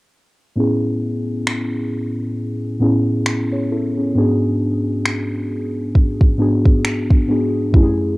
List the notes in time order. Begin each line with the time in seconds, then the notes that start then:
0.56 A2 B3 C#4 E4 G#4
1.47 finger snap
2.80 A2 B3 C#4 E4 G#4
3.26 finger snap
3.52 G#4 C#5
3.72 E4 A4
3.98 C#4 G#4
4.15 G#2 B3 D4 F#4 G#4
5.06 finger snap
5.95 kick
6.21 kick
6.38 G#2 B3 D4 F#4 G#4
6.65 kick
6.85 finger snap
7.10 kick
7.28 G#2 B3 D4 F#4 G#4
7.72 F#2 A3 C#4 E4 G4, kick
7.83 G#4